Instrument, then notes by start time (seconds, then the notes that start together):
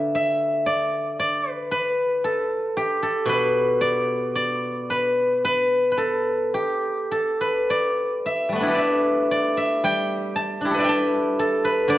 guzheng
Already playing: D3 A4 B4 D5 E5
0.15 E5
0.66 D5
1.19 D5
1.51 B4
1.71 B4
2.24 A4
2.77 G4
3.03 A4
3.26 B2 B4
3.81 D5
4.35 D5
4.90 B4
5.44 B4
5.92 B4
5.98 A4
6.54 G4
7.12 A4
7.41 B4
7.70 D5
8.26 E5
8.49 G3 A3
8.55 B3
8.60 D4 E4
8.66 G4 A4
8.71 B4 D5
8.78 E5
9.31 D5
9.57 E5
9.84 G3 G5
10.36 A5
10.61 D4 E4
10.66 G4
10.71 A4 B4
10.79 D5 E5
10.85 G5
10.89 A5
11.40 A4
11.65 B4
11.88 D3 D5